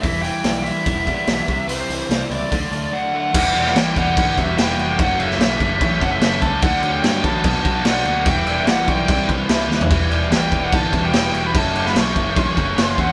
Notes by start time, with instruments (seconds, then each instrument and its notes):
0.01 picked electric bass E1, overdriven electric guitar E3 G3 B3 E4, lead electric guitar E5, kick, open hi-hat
0.23 overdriven electric guitar E3 G3 B3 E4, lead electric guitar G5, open hi-hat
0.43 picked electric bass B1, overdriven electric guitar E3 G3 B3 E4, snare, open hi-hat
0.63 overdriven electric guitar G3 B3 E4, lead electric guitar E5, open hi-hat
0.84 picked electric bass E1, overdriven electric guitar E3 G3 B3 E4, kick, open hi-hat
1.06 overdriven electric guitar E3 G3 B3 E4, kick, open hi-hat
1.25 picked electric bass B1, overdriven electric guitar E3 G3 B3 E4, snare, open hi-hat
1.46 picked electric bass C2, overdriven electric guitar C3 G3 C4 E4, kick, open hi-hat
1.67 picked electric bass C2, overdriven electric guitar C3 G3 C4 E4, lead electric guitar C5, open hi-hat
1.88 picked electric bass C2, overdriven electric guitar E3 G3 C4 E4, open hi-hat
2.09 picked electric bass C2, overdriven electric guitar C3 G3 C4 E4, snare, open hi-hat
2.30 picked electric bass C#2, overdriven electric guitar G3 C4 E4, lead electric guitar D5, open hi-hat
2.51 picked electric bass D2, overdriven electric guitar D3 F#3 A3 D4, kick, open hi-hat
2.71 picked electric bass D2, overdriven electric guitar D3 F#3 A3 D4, open hi-hat
2.92 overdriven electric guitar D3 F#3 A3 D4, lead electric guitar F#5
3.12 overdriven electric guitar F#3 A3 D4
3.17 lead electric guitar F#5
3.32 picked electric bass E1, overdriven electric guitar E3 G3 B3 E4, kick, crash
3.53 picked electric bass E1, overdriven electric guitar G3 B3 E4, crash
3.66 snare
3.74 picked electric bass A1, overdriven electric guitar E3 G3 B3 E4, lead electric guitar G5, snare, crash
3.95 picked electric bass E1, overdriven electric guitar G3 B3 E4, lead electric guitar F#5, kick, crash
4.16 picked electric bass G1, overdriven electric guitar B3, kick, crash
4.36 picked electric bass E1, overdriven electric guitar G3 B3 E4 F#4, lead electric guitar E5, kick, crash
4.56 picked electric bass E1, overdriven electric guitar E3 G3 B3 E4, lead electric guitar G5, snare, crash
4.69 snare
4.78 picked electric bass F1, overdriven electric guitar F#4, crash
4.96 picked electric bass F#1, overdriven electric guitar F#2 C#3 F#3 A3 C#4, lead electric guitar F#5, kick, crash
5.18 picked electric bass F#1, overdriven electric guitar C#3 F#3 A3 C#4, lead electric guitar E5, crash
5.31 snare
5.38 picked electric bass B1, overdriven electric guitar F#2 C#3 E3 F#3 A3 C#4, snare, crash
5.59 picked electric bass F#1, overdriven electric guitar F#3 A3 C#4, kick, crash
5.80 picked electric bass A1, overdriven electric guitar C#4, kick, crash
6.00 picked electric bass F#1, overdriven electric guitar F#3 A3 C#4 A4, lead electric guitar F#5, kick, crash
6.11 lead electric guitar E5
6.20 picked electric bass F#1, overdriven electric guitar C#3 F#3 A3 C#4, snare, crash
6.41 picked electric bass C#2, overdriven electric guitar A4, lead electric guitar A5, kick, crash
6.61 picked electric bass D2, overdriven electric guitar D3 F#3 A3 D4, lead electric guitar F#5, kick, crash
6.82 picked electric bass D2, overdriven electric guitar F#3 A3 D4, crash
6.92 lead electric guitar G5
7.03 picked electric bass G2, overdriven electric guitar D3 F#3 A3 D4, snare, crash
7.23 picked electric bass A1, overdriven electric guitar F#3 A3 B3 D4, lead electric guitar A5, kick, crash
7.43 picked electric bass B1, overdriven electric guitar B2 F#3 B3 D4, kick, crash
7.64 picked electric bass B1, overdriven electric guitar F#3 B3 D4 F#4, kick, crash
7.84 picked electric bass B1, overdriven electric guitar B2 F#3 B3 D4, lead electric guitar F#5, snare, crash
7.88 overdriven electric guitar D4
7.96 snare
8.05 picked electric bass D2, overdriven electric guitar F#4, crash
8.25 picked electric bass E1, overdriven electric guitar E3 G3 B3 E4, lead electric guitar G5, kick, crash
8.46 picked electric bass E1, overdriven electric guitar G3 B3 E4, tine electric piano E5, crash
8.66 picked electric bass A1, overdriven electric guitar E3 G3 B3 E4, lead electric guitar F#5, snare, crash
8.86 picked electric bass B1, overdriven electric guitar G3 B3 E4, lead electric guitar G5, kick, crash
9.07 picked electric bass C2, overdriven electric guitar C3 G3 C4 E4, tine electric piano D5, kick, crash
9.28 picked electric bass C2, overdriven electric guitar G3 C4 E4 B4, tine electric piano C5, kick, crash
9.48 picked electric bass C2, overdriven electric guitar C3 G3 C4 E4, tine electric piano E5, snare, crash
9.61 snare
9.69 picked electric bass D#2, overdriven electric guitar B4, snare
9.81 floor tom
9.89 picked electric bass E1, overdriven electric guitar E3 G3 B3 E4, kick, crash
10.10 picked electric bass E1, overdriven electric guitar G3 B3 E4, crash
10.29 picked electric bass A1, overdriven electric guitar E3 G3 B3 E4, snare, crash
10.35 lead electric guitar G5
10.51 picked electric bass E1, overdriven electric guitar G3 B3 E4, kick, crash
10.64 lead electric guitar F#5
10.72 picked electric bass G1, overdriven electric guitar B3, lead electric guitar A5, kick, crash
10.92 picked electric bass E1, overdriven electric guitar G3 B3 E4 F#4, kick, crash
11.04 lead electric guitar G5
11.12 picked electric bass E1, overdriven electric guitar E3 G3 B3 E4, snare, crash
11.33 picked electric bass E1, overdriven electric guitar F#4, crash
11.46 lead electric guitar B5
11.53 picked electric bass F#1, overdriven electric guitar F#2 C#3 F#3 A3 C#4, lead electric guitar A5, kick, crash
11.74 picked electric bass F#1, overdriven electric guitar C#3 F#3 A3 C#4, crash
11.86 lead electric guitar B5, snare
11.94 picked electric bass B1, overdriven electric guitar F#2 C#3 E3 F#3 A3 C#4, snare, crash
11.98 lead electric guitar C#6
12.15 picked electric bass F#1, overdriven electric guitar F#3 A3 C#4, kick, crash
12.35 picked electric bass A1, overdriven electric guitar C#4, kick, crash
12.39 lead electric guitar C#6
12.55 picked electric bass F#1, overdriven electric guitar F#3 A3 C#4 F#4, kick, crash
12.76 picked electric bass F#1, overdriven electric guitar C#3 F#3 A3 C#4, snare, crash
12.83 lead electric guitar C6
12.89 snare
12.97 picked electric bass E2, overdriven electric guitar F#4, lead electric guitar F#5, kick, crash